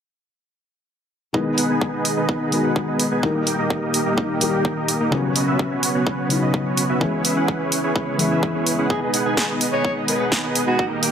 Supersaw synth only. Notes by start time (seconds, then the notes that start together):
1.34 B3 D#4 G#4 B4 D#5
1.58 B3 D#4 G#4 B4 F#5
1.70 B3 D#4 G#4 B4 G#5
1.93 B3 D#4 G#4 B4 D#5
2.17 B3 D#4 G#4 B4 D#5
2.29 B3 D#4
2.52 B3 D#4 G#4 B4 D#5
2.64 B3 D#4 G#4 B4 F#5
2.88 B3 D#4 G#4 B4 D#5
3.11 B3 D#4 G#4 B4 G#5
3.23 A#3 D#4 G4 A#4
3.47 A#3 D#4 G4 A#4 G5
3.59 A#3 D#4 G4 A#4 D#5
3.82 A#3 D#4 G4 A#4 D#5
4.06 A#3 D#4 G4 A#4 D#5
4.18 A#3 D#4 G4
4.41 A#3 D#4 G4 A#4 D#5
4.53 A#3 D#4 G4 A#4 G5
4.77 A#3 D#4 G4 A#4 D#5
5.00 A#3 D#4 G4 A#4 D#5
5.36 B3 C#4 F#4 B4 D#5
5.48 B3 C#4 F#4 B4 E5
5.71 B3 C#4 F#4 B4 C#5
5.95 B3 C#4 F#4 B4 C#5
6.07 B3 C#4 F#4 B4 C#5
6.30 B3 C#4 F#4 B4 C#5
6.42 B3 C#4 F#4 B4 D#5
6.66 B3 C#4 F#4 B4 C#5
6.89 B3 C#4 F#4 B4 E5
7.01 C#4 E4 G#4 B4 C#5
7.25 C#4 E4 G#4 B4 E5
7.37 C#4 E4 G#4 B4 F#5
7.60 C#4 E4 G#4 B4 C#5
7.84 C#4 E4 G#4 B4 C#5
7.96 C#4
8.19 C#4 E4 G#4 B4 C#5
8.31 C#4 E4 G#4 B4 E5
8.55 C#4 E4 G#4 B4 C#5
8.78 C#4 E4 G#4 B4 F#5
8.90 B3 D#4 G#4 B4 D#5
9.14 B3 D#4 G#4 B4 F#5
9.26 B3 D#4 G#4 B4 G#5
9.49 B3 D#4 G#4 B4 D#5
9.73 B3 D#4 G#4 B4 D#5
9.85 D#4 G#4
10.08 B3 D#4 G#4 B4 D#5
10.20 B3 D#4 G#4 B4 F#5
10.44 B3 D#4 G#4 B4 D#5
10.67 B3 D#4 G#4 B4 G#5
10.79 A#3
11.03 A#3 D#4 G4 A#4 G5